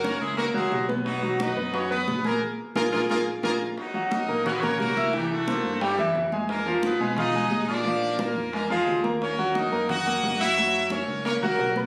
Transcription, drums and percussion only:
0.04 high bongo, high conga
0.21 high bongo, high conga
0.37 high bongo, high conga
0.55 high bongo, high conga
0.72 high bongo, low bongo, high conga
0.89 high conga
1.06 high bongo, high conga
1.23 high bongo, high conga
1.40 high bongo, high conga
1.57 high bongo, high conga
1.74 high bongo, high conga
1.91 high bongo, high conga
2.08 high bongo, low bongo, high conga
2.24 high conga
2.75 high bongo, high conga
2.93 high bongo, high conga
3.09 high bongo, high conga
3.43 high bongo, high conga
3.77 high bongo, high conga
3.94 high bongo, high conga
4.11 high bongo, high conga
4.29 high bongo, high conga
4.46 high bongo, high conga, low conga
4.62 high bongo, high conga, low conga
4.79 high bongo, low bongo, high conga
4.97 high conga
5.13 high bongo, high conga
5.30 high bongo, high conga
5.47 high bongo, high conga
5.65 high bongo, high conga
5.81 high bongo, high conga
5.98 high bongo, high conga
6.15 high bongo, low bongo, high conga
6.32 high conga
6.49 high bongo, high conga
6.66 high bongo, high conga
6.83 high bongo, high conga
7.00 high bongo, high conga
7.17 high bongo, high conga, low conga
7.34 high bongo, high conga, low conga
7.51 high bongo, low bongo, high conga
7.68 high conga
7.85 high bongo, high conga
8.02 high bongo, high conga
8.19 high bongo, high conga
8.36 high bongo, high conga
8.53 high bongo, high conga
8.70 high bongo, high conga
8.88 high bongo, low bongo, high conga
9.04 high conga
9.21 high bongo, high conga
9.38 high bongo, high conga
9.55 high bongo, high conga
9.72 high bongo, high conga
9.89 high bongo, high conga, low conga
10.06 high bongo, high conga
10.23 high bongo, low bongo, high conga
10.40 high conga
10.57 high bongo, high conga
10.74 high bongo, high conga
10.90 high bongo, high conga
11.08 high bongo, high conga
11.25 high bongo, high conga
11.42 high bongo, high conga
11.59 high bongo, low bongo, high conga
11.76 high conga

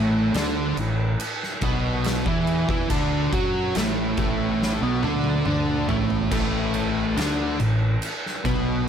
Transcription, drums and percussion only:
0.34 snare, crash
0.77 crash
1.20 crash
1.43 snare
1.61 kick, crash
2.04 snare, crash
2.26 kick
2.47 crash
2.69 kick
2.90 kick, crash
3.33 kick, crash
3.75 snare, crash
4.17 kick, crash
4.62 snare
5.03 high tom
5.24 high tom
5.46 mid tom
5.89 floor tom
6.10 floor tom
6.31 kick, crash
6.74 crash
7.17 snare, crash
7.60 crash
8.02 crash
8.26 snare
8.45 kick, crash

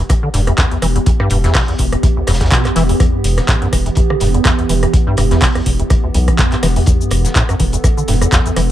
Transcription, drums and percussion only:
0.09 kick, cross-stick, closed hi-hat
0.34 snare, closed hi-hat, open hi-hat
0.47 cross-stick, closed hi-hat
0.58 kick, snare, clap, closed hi-hat
0.71 closed hi-hat
0.82 cross-stick, closed hi-hat, open hi-hat
0.96 closed hi-hat
1.06 kick, closed hi-hat
1.20 cross-stick
1.30 closed hi-hat, open hi-hat
1.44 snare, closed hi-hat
1.54 kick, cross-stick, snare, clap, closed hi-hat, open hi-hat
1.68 closed hi-hat
1.78 kick, closed hi-hat, open hi-hat
1.92 cross-stick, closed hi-hat
2.03 kick, closed hi-hat
2.27 cross-stick, snare, closed hi-hat, open hi-hat
2.34 snare, closed hi-hat
2.40 kick, snare, closed hi-hat
2.46 snare, closed hi-hat
2.51 kick, snare, clap, closed hi-hat
2.65 cross-stick, clap, closed hi-hat
2.75 snare, closed hi-hat, open hi-hat
2.89 open hi-hat
3.00 kick, cross-stick, closed hi-hat
3.24 closed hi-hat, open hi-hat
3.37 cross-stick, snare, closed hi-hat
3.48 kick, snare, clap, closed hi-hat
3.62 closed hi-hat
3.73 kick, cross-stick, closed hi-hat, open hi-hat
3.86 closed hi-hat
3.95 kick, closed hi-hat
3.97 closed hi-hat
4.10 cross-stick
4.20 snare, closed hi-hat, open hi-hat
4.34 closed hi-hat
4.45 kick, cross-stick, snare, clap, closed hi-hat
4.59 closed hi-hat
4.69 closed hi-hat, open hi-hat
4.83 cross-stick, closed hi-hat
4.93 kick, closed hi-hat
5.17 cross-stick, closed hi-hat, open hi-hat
5.31 snare, closed hi-hat
5.41 kick, snare, clap, closed hi-hat, open hi-hat
5.55 cross-stick, closed hi-hat
5.66 kick, closed hi-hat, open hi-hat
5.79 closed hi-hat
5.90 kick, cross-stick, closed hi-hat
6.14 closed hi-hat, open hi-hat
6.28 kick, cross-stick, closed hi-hat
6.38 kick, snare, clap, closed hi-hat
6.52 clap, closed hi-hat
6.63 cross-stick, snare, closed hi-hat, open hi-hat
6.76 open hi-hat
6.86 kick, closed hi-hat, cabasa
7.01 cabasa
7.11 cross-stick, closed hi-hat, open hi-hat
7.24 snare, closed hi-hat, cabasa
7.35 kick, snare, clap, closed hi-hat, cabasa
7.49 cross-stick, closed hi-hat, cabasa
7.59 kick, closed hi-hat, open hi-hat
7.72 closed hi-hat, cabasa
7.84 kick, cross-stick, closed hi-hat, cabasa
7.98 cabasa
8.08 snare, closed hi-hat, open hi-hat
8.21 cross-stick, closed hi-hat, cabasa
8.32 kick, snare, clap, closed hi-hat, cabasa
8.46 closed hi-hat, cabasa
8.56 cross-stick, closed hi-hat, open hi-hat

